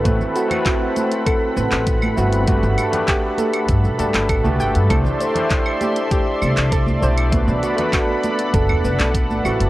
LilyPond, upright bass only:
\new Staff \with { instrumentName = "Upright bass" } { \clef bass \time 4/4 \key b \phrygian \tempo 4 = 99 a,,16 r2 r16 a,,16 a,,8. g,,8~ | g,,16 g,,16 r4. g,16 b,,16 g,16 g,,8 d,16 g,,16 g,16 | c,16 r2 r16 c,16 c,8. b,,8~ | b,,16 b,,16 r4. fis,,16 e,16 fis,,16 b,,8 a,,16 a,,16 fis,,16 | }